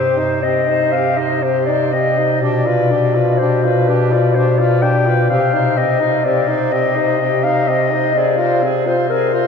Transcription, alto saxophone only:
Already playing: G4
0.19 C5
0.45 G4
0.70 C5
0.95 G4
1.20 C5
1.45 G4
1.71 C5
1.94 G4
2.19 C5
2.43 G4
2.67 B4
2.92 G4
3.17 B4
3.41 G4
3.65 B4
3.89 G4
4.14 B4
4.39 G4
4.61 B4
4.83 G4
5.08 B4
5.31 G4
5.54 C5
5.79 G4
6.02 C5
6.25 G4
6.48 C5
6.73 G4
6.97 C5
7.21 G4
7.45 C5
7.70 G4
7.94 C5
8.16 G#4
8.40 C5
8.64 G#4
8.88 C5
9.13 G#4
9.35 C5

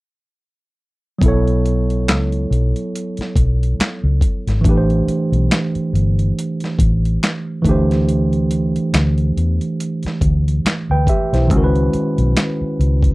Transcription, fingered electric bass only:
1.22 B1
2.09 C#2
2.51 B1
3.18 muted fingered electric bass stroke
3.36 B1
3.79 muted fingered electric bass stroke
4.04 C#2
4.47 G#1
4.65 A1
5.07 muted fingered electric bass stroke
5.32 B1
5.75 muted fingered electric bass stroke
5.93 G1
6.79 A1
7.65 D2
8.94 D2
9.37 E2
10.05 muted fingered electric bass stroke
10.22 D2
10.65 muted fingered electric bass stroke
10.90 D2
11.33 B1
11.51 C#2
11.94 muted fingered electric bass stroke
12.18 B1
12.61 muted fingered electric bass stroke
12.79 C#2

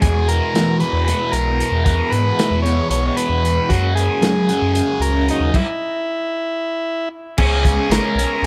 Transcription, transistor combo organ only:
0.02 G#4
0.28 A#4
0.80 B4
1.05 B4
1.32 A#4
1.85 A#4
2.10 B4
2.62 C#5
2.90 C#5
3.07 C#5
3.16 B4
3.69 F#4
3.95 G#4
4.74 G#4
5.01 A#4
5.31 D#4
5.55 E4
7.38 G#4
7.92 A#4

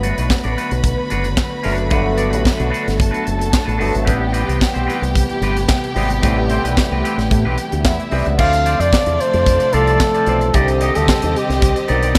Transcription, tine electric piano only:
Already playing: D3 F#3 A3 B3
1.64 D3 F#3 A3 D4
1.91 D3 F#3 A3 B3
3.80 D3 F#3 A3 B3
4.07 C3 E3 G3 B3
5.94 C3 E3 G3 B3
6.22 C3 E3 G3 A3
8.11 C3 E3 G3 B3
8.37 D3 F3 A3 C4
9.72 F3 A3 C4 E4
10.27 E3 F3 A3 C4
10.53 D3 D#3 G3 C4
11.88 D3 D#3 G3 C4

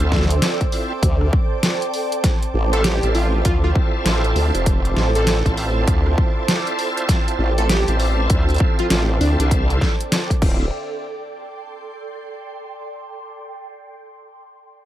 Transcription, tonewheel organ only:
Already playing: C4 E4 F4 A4
0.72 C4 E4 F4 A4
2.73 C4 E4 F4 A4
3.03 C4 E4 F4 A4
5.15 C4 E4 F4 A4
5.46 C4 E4 F4 A4
7.58 C4 E4 F4 A4
7.88 C4 E4 F4 A4
10.42 C4 E4 F4 A4

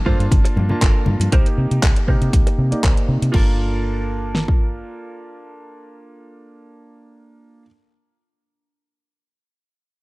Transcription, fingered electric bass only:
0.06 G2
0.19 G2
0.32 G1
0.56 G2
0.82 G1
1.07 G2
1.20 G2
1.32 C2
1.58 C3
1.71 C3
1.83 C2
2.08 C3
2.21 C3
2.33 C2
2.58 C3
2.72 muted fingered electric bass stroke
2.84 C2
3.08 C3
3.22 C3
3.34 G1

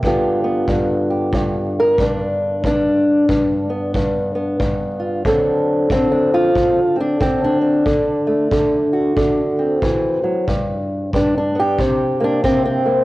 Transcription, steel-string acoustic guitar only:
0.04 G2 D3 B3 F4 G4
0.44 B3
0.69 G2
1.10 G4
1.34 G2
1.80 A#4
1.99 G2 D4
2.65 G2 D4
3.29 G2
3.70 B3
3.96 G2
4.35 B3
4.60 G2
5.00 F4
5.26 D3 F#3 C4 D4 A4
5.91 D3 C4
6.12 D4
6.34 F4
6.55 D3
6.96 C4
7.00 D4
7.20 D3 C4
7.44 D4
7.61 C4
7.85 D3
8.27 A3
8.52 D3
8.93 F#4
9.17 D3
9.59 C4
9.83 E3
10.24 F#3
10.48 G2
11.14 G2 D4
11.37 D4
11.55 B3
11.60 G4
11.80 C3
12.20 A#3 D4
12.44 C3 C4
12.66 C4
12.86 A#3

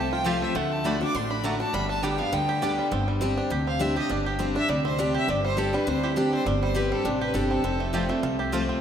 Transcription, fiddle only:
Already playing: A5
0.13 G5
0.27 F5
0.42 E5
0.55 F#5
0.72 A5
0.85 B5
1.02 D6
1.15 C6
1.30 B5
1.44 A#5
1.60 A5
1.73 B5
1.90 A5
2.02 G5
2.18 F5
2.33 G5
3.67 F5
3.81 E5
3.97 D#5
4.11 D5
4.27 G4
4.40 C5
4.56 E5
4.69 D5
4.85 C5
4.99 D5
5.16 E5
5.30 D5
5.43 C5
5.58 A4
5.74 B4
5.88 C5
6.04 E4
6.17 G4
6.33 C5
6.46 D5
6.62 C5
6.76 B4
6.92 A4
7.05 G4
7.20 B4
7.34 A4
7.50 A4

